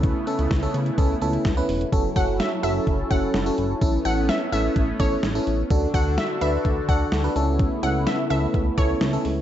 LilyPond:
<<
  \new Staff \with { instrumentName = "Synth pluck" } { \time 4/4 \key a \major \tempo 4 = 127 r1 | r8 fis''16 r16 e''8 e''16 r8. fis''8 r4 | r8 fis''16 r16 e''8 e''16 r8. cis''8 r4 | r8 fis''16 r16 e''8 e''16 r8. fis''8 r4 |
r8 fis''16 r16 e''8 e''16 r8. cis''8 r4 | }
  \new Staff \with { instrumentName = "FM electric piano" } { \time 4/4 \key a \major <cis' e' a'>16 r16 <cis' e' a'>8 r16 <cis' e' a'>8 r16 <cis' e' a'>8 <cis' e' a'>8 r16 <cis' e' b'>8 r16 | <cis' fis' a'>8 <cis' fis' a'>8. r16 <cis' fis' a'>8. r16 <cis' fis' a'>8 r16 <cis' fis' a'>8 r16 | <cis' e' a'>8 <cis' e' a'>8. r16 <cis' e' a'>8. r16 <cis' e' a'>8 r16 <cis' e' a'>8 r16 | <d' fis' a'>8 <d' fis' a'>8. r16 <d' fis' b'>8. r16 <d' fis' a'>8 r16 <d' fis' b'>16 <cis' e' a'>8~ |
<cis' e' a'>16 r16 <cis' e' a'>8. r16 <cis' e' a'>8. r16 <cis' e' a'>8 r16 <cis' e' a'>8 r16 | }
  \new Staff \with { instrumentName = "Analog synth pad" } { \time 4/4 \key a \major <cis a b e'>1 | <fis cis' e' a'>1 | <a b cis'>1 | <d d' fis' a'>2.~ <d d' fis' a'>8 <cis a b e'>8~ |
<cis a b e'>1 | }
  \new Staff \with { instrumentName = "Analog synth bass" } { \clef bass \time 4/4 \key a \major cis,8 r16 cis,16 cis,8 cis8 cis,8 cis,8 cis,8 e,,8 | fis,,8 fis,,8. r16 fis,,8 fis,,8 fis,,8 fis,,8 fis,,8 | a,,8 a,,8. r16 a,,8 a,,8 a,,8 a,,8 a,,8 | d,8 d,8. r16 d,8 d,8 d,8 d,8 cis,8~ |
cis,8 cis,8. r16 cis,8 cis,8 cis,8 cis,8 cis,8 | }
  \new DrumStaff \with { instrumentName = "Drums" } \drummode { \time 4/4 <hh bd>8 hh16 hh16 <hh bd sn>8 hh16 hh16 <hh bd>8 hh16 hh16 <hh bd sn>8 hho16 hh16 | <hh bd>8 <hh bd>8 <hh sn>8 hh8 <hh bd>8 <hh bd>8 <hh sn>8 hh8 | <hh bd>8 hh8 <hh sn>8 hh8 <hh bd>8 <hh bd>8 <hh sn>8 hh8 | <hh bd>8 <hh bd>8 <hh sn>8 hh8 <hh bd>8 <hh bd>8 <hh sn>8 hh8 |
<hh bd>8 hh8 <hh sn>8 hh8 <hh bd>8 <hh bd>8 <hh sn>8 hho8 | }
>>